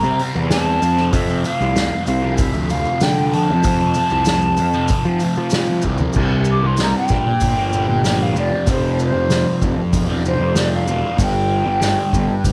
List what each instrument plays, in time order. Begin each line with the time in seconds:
Already playing: flute A#5
0.03 picked electric bass C3, distorted electric guitar G3 C4, maracas
0.19 distorted electric guitar C3 G3 C4, open hi-hat
0.35 picked electric bass E2, maracas
0.50 distorted electric guitar C3 G3 C4, flute A5, snare, open hi-hat, maracas
0.66 distorted electric guitar G3 C4
0.81 distorted electric guitar F2 C3 F3, picked electric bass F2, open hi-hat, maracas
0.97 distorted electric guitar C3 F3, snare
1.12 distorted electric guitar F2 C3 F3, picked electric bass F2, flute E5, kick, open hi-hat, maracas
1.27 distorted electric guitar C3 F3, maracas
1.43 distorted electric guitar F2 C3 F3, flute F5, open hi-hat, maracas
1.61 picked electric bass C2, maracas
1.75 distorted electric guitar F2 C3 F3, snare, open hi-hat, maracas
2.07 picked electric bass C2, flute F5, muted distorted electric guitar stroke, open hi-hat, maracas
2.23 distorted electric guitar C3 F3
2.38 flute E5, kick, open hi-hat, maracas
2.54 picked electric bass D2, distorted electric guitar C3 F3, maracas
2.70 distorted electric guitar F2 C3 F3, flute F5, open hi-hat, maracas
2.85 maracas
3.00 distorted electric guitar F2 C3, picked electric bass D3, flute G5, snare, open hi-hat, maracas
3.05 distorted electric guitar F3
3.17 distorted electric guitar C3 F3
3.33 distorted electric guitar F2 C3 F3, flute A5, open hi-hat
3.49 picked electric bass F2, distorted electric guitar C3 F3
3.63 picked electric bass F2, distorted electric guitar F2 C3, kick, open hi-hat, maracas
3.68 distorted electric guitar F3
3.81 distorted electric guitar C3 F3
3.94 distorted electric guitar F2 C3, open hi-hat, maracas
3.99 distorted electric guitar F3
4.10 picked electric bass C2, maracas
4.25 distorted electric guitar F2 C3, snare, open hi-hat, maracas
4.30 distorted electric guitar F3
4.42 maracas
4.57 picked electric bass F2, muted distorted electric guitar stroke, open hi-hat, maracas
4.73 distorted electric guitar C3 F3, maracas
4.88 kick, open hi-hat, maracas
5.05 distorted electric guitar C3 F3, picked electric bass F3, maracas
5.20 distorted electric guitar F2 C3, open hi-hat, maracas
5.25 distorted electric guitar F3
5.36 picked electric bass F3, maracas
5.50 distorted electric guitar F2, snare, open hi-hat, maracas
5.54 distorted electric guitar C3 F3
5.66 distorted electric guitar F3, maracas
5.73 distorted electric guitar C3
5.82 picked electric bass C2, distorted electric guitar F2, kick, maracas
5.87 distorted electric guitar C3 F3
5.98 distorted electric guitar F3, floor tom, maracas
6.04 distorted electric guitar C3
6.13 picked electric bass C2, harmonium G2, distorted electric guitar C3, kick, crash, maracas
6.17 distorted electric guitar G3 C4
6.45 maracas
6.51 flute D6
6.63 picked electric bass C2, distorted electric guitar G3 C4, flute C6
6.77 distorted electric guitar C3 G3 C4, snare, open hi-hat, maracas
6.82 flute A#5
6.98 flute G5
7.08 picked electric bass A#1, distorted electric guitar A#2 F3, kick, snare, maracas
7.13 distorted electric guitar A#3
7.26 muted distorted electric guitar stroke
7.40 picked electric bass G1, kick, open hi-hat, maracas
7.56 distorted electric guitar F3 A#3
7.72 distorted electric guitar A#2 F3 A#3, maracas
7.88 picked electric bass G1, muted distorted electric guitar stroke
8.03 distorted electric guitar A#2 F3 A#3, snare, open hi-hat, maracas
8.22 flute F5
8.35 picked electric bass F1, distorted electric guitar F2 C3 F3, flute D5, maracas
8.51 distorted electric guitar C3 F3
8.65 picked electric bass F1, distorted electric guitar F2 C3 F3, kick, open hi-hat, maracas
8.70 flute C5
8.99 maracas
9.03 flute C5
9.12 picked electric bass F1, distorted electric guitar C3 F3
9.28 distorted electric guitar F2 C3 F3, snare, open hi-hat, maracas
9.62 picked electric bass F1, kick, maracas
9.76 muted distorted electric guitar stroke
9.93 picked electric bass E1, kick, open hi-hat, maracas
10.07 distorted electric guitar C3 F3
10.23 distorted electric guitar F2 C3 F3, flute C5, maracas
10.39 picked electric bass F1, muted distorted electric guitar stroke
10.55 distorted electric guitar F2 C3 F3, snare, open hi-hat, maracas
10.59 flute D5
10.74 flute F5
10.87 picked electric bass E1, distorted electric guitar F2 C3 F3, maracas
11.03 distorted electric guitar C3 F3
11.17 picked electric bass G1, distorted electric guitar G2 D3 G3, kick, open hi-hat, maracas
11.22 flute G5
11.64 picked electric bass G1, distorted electric guitar D3 G3
11.80 distorted electric guitar G2 D3 G3, snare, open hi-hat, maracas
12.13 picked electric bass G1, kick, maracas
12.28 muted distorted electric guitar stroke
12.44 picked electric bass F1, kick, open hi-hat, maracas